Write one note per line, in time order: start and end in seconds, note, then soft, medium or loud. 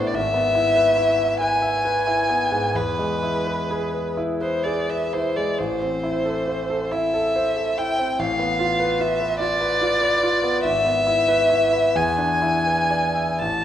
0.00 0.10 A1 soft
0.00 0.14 A2 soft
0.00 0.17 B3 soft
0.00 0.17 D4 soft
0.00 0.17 B4 soft
0.00 0.17 D5 soft
0.07 0.16 D5 soft
0.14 2.70 G#1 soft
0.14 1.40 E5 medium
0.34 0.67 B3 soft
0.55 0.88 E4 soft
0.75 1.09 B4 soft
0.97 1.31 E4 soft
1.19 1.53 E5 soft
1.41 1.76 B4 soft
1.41 2.77 G#5 medium
1.62 1.97 E5 soft
1.85 2.20 B4 soft
2.07 2.43 E4 soft
2.29 2.66 B3 soft
2.52 2.75 G#2 soft
2.74 5.54 E2 soft
2.74 4.17 B4 medium
2.99 3.37 G#3 soft
3.23 3.60 E4 soft
3.47 3.84 B4 soft
3.71 4.08 G#4 soft
3.94 4.31 B4 soft
4.17 4.55 E4 soft
4.41 4.79 B4 soft
4.41 4.65 C5 soft
4.64 5.03 G#4 soft
4.64 4.91 D5 soft
4.89 5.27 B4 soft
4.89 5.14 E5 soft
5.13 5.50 E4 soft
5.13 5.38 C5 soft
5.36 5.59 G#3 soft
5.36 5.60 D5 soft
5.58 8.15 A1 soft
5.58 6.93 C5 soft
5.82 6.16 C4 soft
6.03 6.38 E4 soft
6.25 6.60 A4 soft
6.48 6.83 C5 soft
6.70 7.04 A4 soft
6.91 7.26 E4 soft
6.91 7.79 E5 medium
7.14 7.48 A4 soft
7.36 7.69 C5 soft
7.57 7.90 A4 soft
7.78 8.11 E4 soft
7.78 8.20 G5 medium
7.99 8.19 C4 soft
8.19 10.60 A1 soft
8.19 9.03 F5 medium
8.39 8.72 B3 soft
8.59 8.92 F4 soft
8.80 9.12 B4 soft
9.00 9.32 F4 soft
9.00 9.40 E5 medium
9.21 9.53 B4 soft
9.40 9.73 F4 soft
9.40 10.62 D5 medium
9.61 9.94 B4 soft
9.81 10.14 F4 soft
10.01 10.35 B4 soft
10.23 10.56 F4 soft
10.44 10.64 B3 soft
10.64 11.93 G#1 soft
10.64 11.98 E5 medium
10.85 11.20 B3 soft
11.07 11.42 E4 soft
11.28 11.65 B4 soft
11.50 11.87 E4 soft
11.73 11.96 B4 soft
11.95 13.37 E2 soft
11.95 13.42 G#5 medium
12.18 12.56 D4 soft
12.42 12.81 E4 soft
12.66 13.06 B4 soft
12.91 13.31 D5 soft
13.15 13.41 E5 soft
13.41 13.64 A1 soft
13.41 13.64 A5 medium